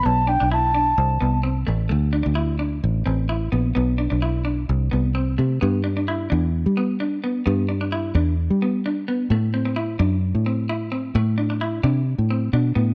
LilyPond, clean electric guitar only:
\new Staff \with { instrumentName = "Clean electric guitar" } { \time 4/4 \key g \major \tempo 4 = 130 b8 d'16 d'16 e'8 d'8 r8 b8 c'8 a8 | a8 d'16 d'16 e'8 d'8 r8 c'8 e'8 b8 | b8 d'16 d'16 e'8 d'8 r8 b8 c'8 a8 | b8 d'16 d'16 e'8 d'8 r8 b8 d'8 b8 |
b8 d'16 d'16 e'8 d'8 r8 b8 d'8 b8 | a8 c'16 c'16 e'8 d'8 r8 c'8 e'8 c'8 | a8 d'16 d'16 e'8 d'8 r8 c'8 d'8 b8 | }